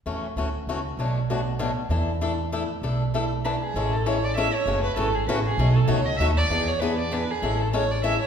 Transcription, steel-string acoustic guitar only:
X:1
M:3/4
L:1/8
Q:"Swing" 1/4=196
K:A
V:1 name="Steel-string acoustic guitar"
[E,A,CF] z [E,A,CF] z [E,A,CF] z | [B,,F,A,DF] z [B,,F,A,DF] z [B,,F,A,DF] z | [E,A,DEA] z [E,A,DEA] z [E,A,DEA] z | [E,A,DEA] z [E,A,DEA] z [E,A,DEA] z |
[E,G,CEA] z [E,G,CEA] z [E,G,CEA] z | [C,E,A,CF] z [C,E,A,CF] z [C,E,A,CF] z | [B,,F,A,^DF] z [B,,F,A,DF] z [B,,F,A,DF] z | [E,B,DG] z [E,B,DG] z [E,B,DG] z |
[E,G,CEA] z [E,G,CEA] z [E,G,CEA] z |]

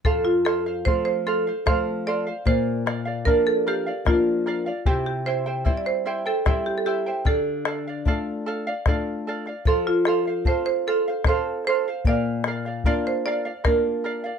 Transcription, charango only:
X:1
M:3/4
L:1/16
Q:1/4=75
K:F
V:1 name="Charango"
[Acf]2 [Acf] [cf] [Acf]2 [Acf] [cf] [Acf]2 [Acf] [cf] | [Bdf]2 [Bdf] [df] [Bdf]2 [Bdf] [df] [Bdf]2 [Bdf] [df] | [EGceg]2 [Eceg] [Ecg] [Eceg]2 [Eceg] [Ecg] [EGceg]2 [Eceg] [Ecg] | [Adf]2 [Adf] [df] [Adf]2 [Adf] [df] [Adf]2 [Adf] [df] |
[Acf]2 [Acf] [cf] [Acf]2 [Acf] [cf] [Acf]2 [Acf] [cf] | [Bdf]2 [Bdf] [df] [Bdf]2 [Bdf] [df] [Bdf]2 [Bdf] [df] |]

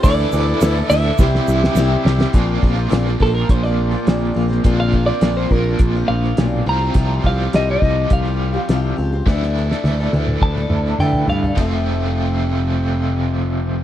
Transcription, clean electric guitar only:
X:1
M:4/4
L:1/16
Q:1/4=104
K:Bblyd
V:1 name="Clean electric guitar"
d6 e8 z2 | z6 A B c d6- d- | d f2 d2 c B2 z2 f4 b2- | b2 f2 _e e3 f8 |
z8 a4 g2 f2 | z16 |]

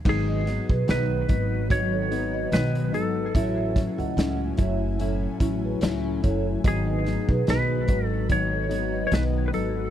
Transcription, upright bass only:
X:1
M:4/4
L:1/16
Q:"Swing 16ths" 1/4=73
K:G#phr
V:1 name="Upright bass" clef=bass
G,,,3 B,,, B,,,2 G,,,6 B,,,2 G,,,2 | A,,,3 C,, C,,2 F,,,4 A,,,2 C,,2 F,,,2 | G,,,3 B,,, B,,,2 G,,,6 B,,,2 G,,,2 |]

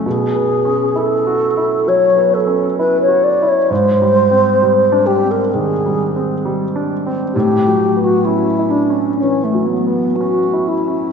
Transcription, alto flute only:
X:1
M:4/4
L:1/16
Q:1/4=66
K:A
V:1 name="Alto flute"
G4 A4 c2 A2 B c d c | ^B6 =G _B ^G4 z4 | =G3 F E2 D2 C A, B,2 F2 E2 |]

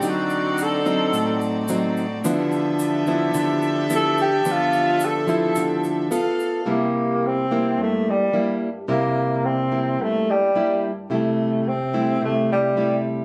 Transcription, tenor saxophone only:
X:1
M:4/4
L:1/8
Q:1/4=108
K:Cmix
V:1 name="Tenor saxophone"
^F2 A3 z3 | z6 A G | F2 A3 z3 | B,2 C2 A, G,2 z |
B,2 C2 A, G,2 z | A,2 C2 A, G,2 z |]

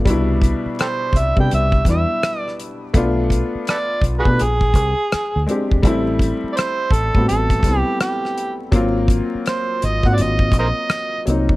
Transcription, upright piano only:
X:1
M:4/4
L:1/16
Q:"Swing 16ths" 1/4=83
K:Clyd
V:1 name="Upright piano"
[B,,G,DE]6 z [G,B,DG]3 [G,B,DE]4- [G,B,DE] z | [A,B,D=F]6 z [A,B,DG] z6 [_A,CDG]2 | [G,A,CE]6 z [G,B,CF]3 [G,B,CE]4- [G,B,CE] z | [_G,_B,C=F]6 z [G,B,C_G]6 z [G,B,C_E]2 |]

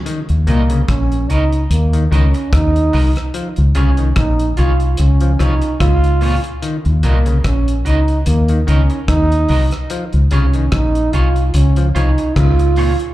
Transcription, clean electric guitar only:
X:1
M:4/4
L:1/8
Q:"Swing 16ths" 1/4=73
K:Ebdor
V:1 name="Clean electric guitar"
z [GBe] z [GBe] z [GBe] z [GBe] | z [FAd] z [FAd] z [FAd] z [FAd] | z [GBe] z [GBe] z [GBe] z [GBe] | z [FAd] z [FAd] z [FAd] z [FAd] |]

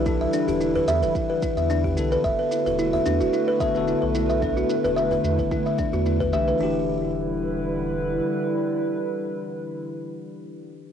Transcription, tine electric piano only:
X:1
M:4/4
L:1/16
Q:"Swing 16ths" 1/4=110
K:Em
V:1 name="Tine electric piano"
[E,DA]12- [E,DA]2 [D,B,A]2- | [D,B,A]8- [D,B,A]2 [D,B,A] [D,B,A]4- [D,B,A] | [D,B,B]12- [D,B,B]2 [E,DG]2 | [E,DG]16- |
[E,DG]16 |]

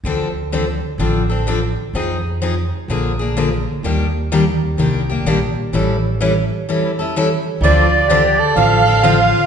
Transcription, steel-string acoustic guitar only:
X:1
M:4/4
L:1/8
Q:"Swing" 1/4=127
K:Dphr
V:1 name="Steel-string acoustic guitar"
[D,F,CDA] z [D,F,CDA] z [D,F,CDA] [CDA] [D,F,CDA] z | [F,CE_A] z [F,CEA] z [D,F,B,DA] [B,DA] [D,F,B,DA] z | [E,G,B,DG] z [E,G,B,DG] z [E,G,B,DG] [B,DG] [E,G,B,DG] z | [=E,G,^C=EA] z [E,G,CEA] z [E,G,CEA] [CEA] [E,G,CEA] z |
[K:Dm] [D,F,CDA] z [D,F,CDA] z [D,F,CDA] [CDA] [D,F,CDA] z |]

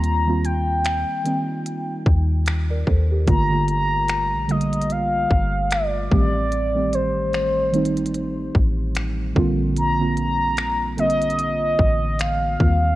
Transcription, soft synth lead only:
X:1
M:4/4
L:1/8
Q:"Swing 16ths" 1/4=74
K:Bb
V:1 name="Soft synth lead"
b g4 z3 | b b2 e f2 d d- | d c4 z3 | b b2 e3 f2 |]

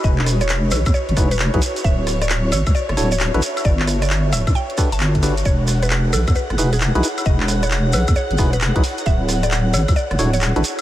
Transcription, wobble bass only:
X:1
M:4/4
L:1/16
Q:"Swing 16ths" 1/4=133
K:E
V:1 name="Wobble bass" clef=bass
E,,,6 B,,, E,, z G,,, E,,,3 B,,, z2 | =D,,,6 A,,, =D,, z F,,, D,,,3 A,,, z2 | =G,,,6 =D,,, =G,, z3 G,,,4- G,,, | E,,,6 B,,, E,, z G,,, E,,,3 B,,, z2 |
E,,,6 B,,, E,, z G,,, E,,,3 B,,, z2 | =D,,,6 A,,, =D,, z F,,, D,,,3 A,,, z2 |]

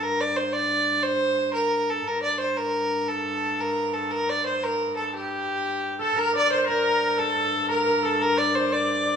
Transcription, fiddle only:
X:1
M:6/8
L:1/8
Q:3/8=118
K:Gm
V:1 name="Fiddle"
B d c d3 | c3 B2 A | B d c B3 | A3 B2 A |
B d c B2 A | G4- G A | B d c B3 | A3 B2 A |
B d c d3 |]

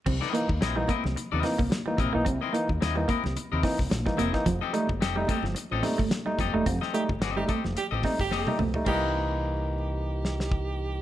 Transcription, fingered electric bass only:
X:1
M:4/4
L:1/16
Q:"Swing 16ths" 1/4=109
K:F
V:1 name="Fingered electric bass" clef=bass
C,, z2 ^D,, B,,,2 z C,, z D,, z C,, z2 B,,, =B,,, | C,, z2 ^D,, D,,2 z C,, z D,, z C,, B,,, z E,,, z | F,,, z2 G,,, F,,,2 z G,,, z A,,, z G,,, z2 F,,, E,,, | F,,, z2 G,,, G,,,2 z F,,, z A,,, z G,,, F,,, z =B,,, z |
C,,16 |]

